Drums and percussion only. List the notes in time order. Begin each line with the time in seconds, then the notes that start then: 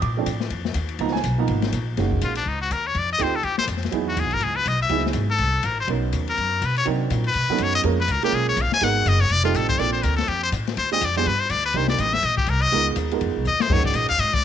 0.02 kick, ride
0.26 kick, hi-hat pedal, ride
0.40 snare
0.50 kick, ride
0.65 snare
0.74 kick, hi-hat pedal, ride
0.89 ride
0.99 kick, ride
1.08 snare
1.16 snare
1.24 kick, hi-hat pedal, ride
1.48 kick, ride
1.62 snare, ride
1.72 kick, hi-hat pedal, ride
1.97 kick, snare, ride
2.12 kick
2.21 kick, hi-hat pedal, ride
2.35 ride
2.46 kick
2.71 kick, hi-hat pedal, ride
2.95 kick, ride
3.19 kick, hi-hat pedal, ride
3.43 kick, ride
3.58 snare
3.68 kick, hi-hat pedal, ride
3.77 snare
3.83 snare, ride
3.92 kick, ride
4.17 kick, hi-hat pedal, ride
4.31 ride
4.41 kick, ride
4.65 kick, hi-hat pedal, ride
4.89 kick, ride
4.98 snare
5.06 snare
5.13 kick, hi-hat pedal, ride
5.38 kick, ride
5.63 kick, hi-hat pedal, ride
5.88 kick, ride
6.13 kick, hi-hat pedal, ride
6.28 ride
6.38 kick, ride
6.62 kick, hi-hat pedal, ride
6.76 ride
6.86 kick, ride
7.10 kick, hi-hat pedal, ride
7.24 ride
7.34 kick, ride
7.58 kick, hi-hat pedal, ride
7.74 ride
7.83 kick, ride
8.08 kick, hi-hat pedal, ride
8.22 ride
8.32 kick, ride
8.57 kick, hi-hat pedal, ride
8.72 snare
8.81 kick, ride
9.06 kick, hi-hat pedal, ride
9.30 kick, ride
9.54 kick, hi-hat pedal, ride
9.69 kick, ride
9.79 kick, ride
10.03 kick, hi-hat pedal, ride
10.18 snare, ride
10.28 kick, ride
10.52 kick, hi-hat pedal, ride
10.67 snare, ride
10.77 kick, ride
11.01 kick, hi-hat pedal, ride
11.16 ride
11.26 kick, ride
11.50 kick, hi-hat pedal, ride
11.64 ride
11.73 kick, ride
11.88 snare
11.98 kick, hi-hat pedal, ride
12.13 snare
12.23 kick, ride
12.38 kick
12.46 kick, hi-hat pedal, ride
12.62 ride
12.71 kick, ride
12.96 kick, hi-hat pedal, ride
13.11 ride
13.21 kick, ride
13.45 hi-hat pedal
13.60 snare
13.70 kick, snare, crash
13.84 kick
13.94 kick, hi-hat pedal, ride
14.09 ride
14.19 kick, ride
14.34 kick